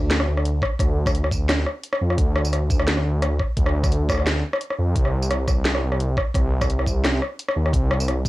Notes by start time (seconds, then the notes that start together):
Already playing: D2
0.11 snare, closed hi-hat
0.20 cross-stick
0.27 D2
0.37 cross-stick
0.45 closed hi-hat
0.62 kick, cross-stick
0.79 D2, kick, cross-stick, closed hi-hat
1.06 kick, cross-stick, tambourine
1.15 closed hi-hat
1.24 cross-stick
1.31 kick, tambourine
1.49 cross-stick, snare, closed hi-hat
1.66 cross-stick
1.83 closed hi-hat
1.93 cross-stick
2.01 F2
2.10 cross-stick
2.18 D2, kick, closed hi-hat
2.36 cross-stick
2.45 tambourine
2.53 cross-stick, closed hi-hat
2.70 kick, tambourine
2.80 cross-stick
2.88 snare, closed hi-hat
2.97 cross-stick
3.05 D2
3.22 cross-stick, closed hi-hat
3.40 kick, cross-stick
3.57 D2, kick, closed hi-hat
3.66 cross-stick
3.83 kick, cross-stick, closed hi-hat, tambourine
3.92 closed hi-hat
4.09 kick, cross-stick, tambourine
4.12 cross-stick
4.15 cross-stick
4.18 cross-stick
4.20 cross-stick
4.22 cross-stick
4.25 cross-stick
4.27 cross-stick, snare, closed hi-hat
4.53 cross-stick
4.61 closed hi-hat
4.71 cross-stick
4.78 F2
4.96 C2, kick, closed hi-hat
5.05 cross-stick
5.22 tambourine
5.31 cross-stick, closed hi-hat
5.48 kick, cross-stick, tambourine
5.65 snare, closed hi-hat
5.75 cross-stick
5.82 C2
5.92 cross-stick
6.00 closed hi-hat
6.17 kick, cross-stick
6.34 C2, kick, cross-stick, closed hi-hat
6.61 kick, cross-stick, tambourine
6.70 closed hi-hat
6.79 cross-stick
6.86 kick, tambourine
7.04 cross-stick, snare, closed hi-hat
7.22 cross-stick
7.39 closed hi-hat
7.48 cross-stick
7.56 D#2
7.66 cross-stick
7.73 C2, kick, closed hi-hat
7.91 cross-stick
8.00 tambourine
8.08 cross-stick, closed hi-hat
8.25 kick, tambourine